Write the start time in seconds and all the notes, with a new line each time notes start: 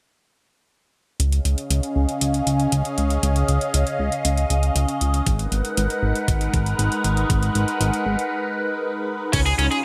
1.19 C#2 C#3 C#4 G#4 D#5 F5, closed hi-hat
1.32 closed hi-hat
1.45 C#2, closed hi-hat
1.58 closed hi-hat
1.70 C#2, closed hi-hat
1.83 closed hi-hat
1.96 C#2
2.09 closed hi-hat
2.21 C#2, closed hi-hat
2.34 closed hi-hat
2.47 C#2, closed hi-hat
2.60 closed hi-hat
2.72 C#2, closed hi-hat
2.85 closed hi-hat
2.98 C#2, closed hi-hat
3.10 closed hi-hat
3.23 C#2, closed hi-hat
3.36 closed hi-hat
3.48 C#2, closed hi-hat
3.61 closed hi-hat
3.74 C#2, closed hi-hat
3.87 closed hi-hat
3.99 C#2
4.12 closed hi-hat
4.25 C#2, closed hi-hat
4.37 closed hi-hat
4.50 C#2, closed hi-hat
4.63 closed hi-hat
4.76 C#2, closed hi-hat
4.88 closed hi-hat
5.01 C#2, closed hi-hat
5.14 closed hi-hat
5.26 G#1 G#3 D#4 A#4 B4 F#5, kick, closed hi-hat
5.39 closed hi-hat
5.52 G#1, closed hi-hat
5.65 closed hi-hat
5.77 G#1, closed hi-hat
5.90 closed hi-hat
6.03 G#1
6.15 closed hi-hat
6.28 G#1, kick, closed hi-hat
6.41 closed hi-hat
6.53 G#1, kick, closed hi-hat
6.66 closed hi-hat
6.79 G#1, closed hi-hat
6.92 closed hi-hat
7.04 G#1, closed hi-hat
7.17 closed hi-hat
7.30 G#1, kick, closed hi-hat
7.43 closed hi-hat
7.55 G#1, closed hi-hat
7.68 closed hi-hat
7.81 G#1, closed hi-hat
7.93 closed hi-hat
8.06 G#1
8.19 closed hi-hat
9.33 C#2 C#3 C#4 D#4 F4 G#4, kick, closed hi-hat, crash
9.46 G#4, closed hi-hat
9.58 C#2 C#4, closed hi-hat
9.71 G#4, closed hi-hat